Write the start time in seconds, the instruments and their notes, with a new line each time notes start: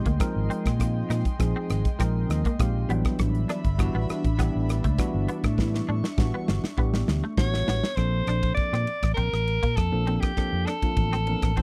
Already playing: analog synth pad G#3 D#5 G5 C6
0.06 fretless electric bass D2, clean electric guitar A#3, kick, closed hi-hat
0.20 tine electric piano F3 G#3 C4 D#4 A#4, kick, cross-stick, closed hi-hat
0.36 fretless electric bass G#1
0.50 clean electric guitar C4, closed hi-hat
0.66 fretless electric bass A#2, kick, cross-stick, closed hi-hat
0.79 tine electric piano F3 G#3 C4 D#4 F4, kick, cross-stick, closed hi-hat
1.10 fretless electric bass A#2, clean electric guitar D#4, cross-stick, closed hi-hat
1.25 kick, closed hi-hat
1.39 fretless electric bass A#1, tine electric piano F3 G#3 C4 D#4 G#4, kick, cross-stick, closed hi-hat
1.56 clean electric guitar C4
1.70 fretless electric bass G#1, cross-stick, closed hi-hat
1.85 muted fretless electric bass stroke, kick, closed hi-hat
1.99 fretless electric bass A#1, tine electric piano F3 G#3 C4 D#4 A#4, clean electric guitar C4, kick, cross-stick, closed hi-hat
2.29 fretless electric bass D#2, tine electric piano D#5, cross-stick, closed hi-hat
2.45 clean electric guitar A#3, muted fretless electric bass stroke, kick, closed hi-hat
2.59 fretless electric bass A#1, tine electric piano F3 G#3 C4 D#4 G4 F5, kick, cross-stick, closed hi-hat
2.89 fretless electric bass A1, tine electric piano E3 F#3 G3 B3 D4 G5, clean electric guitar B3, analog synth pad D4 E5 B5, closed hi-hat
3.05 kick, cross-stick, closed hi-hat
3.19 fretless electric bass A1, kick, cross-stick, closed hi-hat
3.35 closed hi-hat
3.49 clean electric guitar D4, cross-stick, closed hi-hat
3.65 fretless electric bass G1, kick, closed hi-hat
3.78 tine electric piano E3 G3 B3 D4 F#4, kick, cross-stick, closed hi-hat
3.95 fretless electric bass A1, clean electric guitar B3
4.09 muted fretless electric bass stroke, cross-stick, closed hi-hat
4.24 fretless electric bass A1, kick, closed hi-hat
4.38 tine electric piano E3 G3 B3 D4 G4, clean electric guitar B3, kick, cross-stick, closed hi-hat
4.55 fretless electric bass A1
4.69 cross-stick, closed hi-hat
4.84 fretless electric bass C#2, clean electric guitar A3, kick, closed hi-hat
4.98 tine electric piano E3 G3 B3 D4 F#4, kick, cross-stick, closed hi-hat
5.14 fretless electric bass G1
5.28 clean electric guitar B3, analog synth pad C#6, closed hi-hat
5.44 fretless electric bass A2, kick, cross-stick, closed hi-hat
5.58 tine electric piano E3 G3 B3 D4 E4, kick, snare
5.74 snare
5.89 fretless electric bass A2, clean electric guitar D4
6.04 snare
6.18 fretless electric bass A1, tine electric piano E3 G3 B3 D4 F#4, kick, snare
6.34 clean electric guitar B3
6.48 fretless electric bass G1, snare
6.64 muted fretless electric bass stroke, snare
6.77 fretless electric bass A1, tine electric piano E3 G3 B3 D4 G4, clean electric guitar B3, kick
6.94 snare
7.08 fretless electric bass D2, snare
7.23 clean electric guitar A3, muted fretless electric bass stroke
7.37 fretless electric bass A1, tine electric piano E3 G3 B3 D4 F#4, soprano saxophone C#5, kick, snare
7.54 snare
7.67 fretless electric bass A1, clean electric guitar B3, snare
7.84 snare
7.96 fretless electric bass A#1, tine electric piano F3 A#3 C4 D4 A4, soprano saxophone C5, kick, cross-stick, ride
8.27 fretless electric bass A#1, clean electric guitar D4, cross-stick, ride
8.43 kick, ride
8.54 soprano saxophone D5, muted fretless electric bass stroke, kick, ride
8.73 fretless electric bass A#2, clean electric guitar C4, cross-stick
8.87 ride
9.03 fretless electric bass A1, kick, cross-stick, ride
9.14 fretless electric bass A#1, clean electric guitar C4, soprano saxophone A#4, kick, ride
9.33 fretless electric bass A1, cross-stick
9.48 ride
9.63 fretless electric bass A#2, clean electric guitar A#3, kick, ride
9.76 fretless electric bass F2, soprano saxophone A4, kick, cross-stick, ride
9.92 fretless electric bass A#1, tine electric piano F3 A#3 C4 D4 A4
10.07 tine electric piano F3 A#3 C4 D4 A4, clean electric guitar C4, ride
10.15 soprano saxophone A4
10.20 soprano saxophone G4, kick, cross-stick, ride
10.37 tine electric piano F3 A#3 C4 D4 A4, kick, cross-stick, ride
10.53 fretless electric bass F2
10.66 clean electric guitar D4, soprano saxophone A4, cross-stick, ride
10.82 tine electric piano F3 A#3 C4 D4 F4, muted fretless electric bass stroke, kick, ride
10.97 fretless electric bass A1, kick, ride
11.13 clean electric guitar C4, cross-stick
11.27 tine electric piano F3 A#3 C4 D4 A#4, ride
11.42 fretless electric bass A1, kick, cross-stick, ride
11.57 tine electric piano F3 A#3 C4 D4 A4, clean electric guitar C4, kick, ride